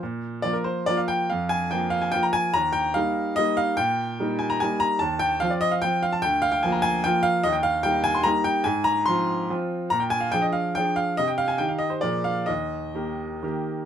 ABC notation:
X:1
M:3/4
L:1/16
Q:1/4=144
K:Eb
V:1 name="Grand piano"
z4 d B c2 d f g2 | f2 a2 g2 f a g b a2 | b2 g2 f4 e2 f2 | g6 a b a2 b2 |
=a2 g2 f d e f g2 f a | g2 f g a b a2 g2 f2 | e g f2 g2 a c' b2 g2 | a2 b2 c'4 z4 |
b g a f g e f2 g2 f2 | e g f a g f e c d2 f2 | e12 |]
V:2 name="Grand piano"
B,,4 [F,B,F]4 [F,B,F]4 | F,,4 [F,B,F]4 [F,B,F]4 | E,,4 [G,B,E]4 [G,B,E]4 | B,,4 [G,B,E]4 [G,B,E]4 |
E,,4 [F,CF]4 [F,CF]4 | D,,4 [F,B,F]4 [F,B,F]4 | E,,4 [G,B,E]4 [G,B,E]4 | A,,4 [F,CF]4 [F,CF]4 |
B,,4 [F,DA]4 [F,DA]4 | C,4 [E,EG]4 [B,,F,B,A]4 | E,,4 [E,B,G]4 [E,B,G]4 |]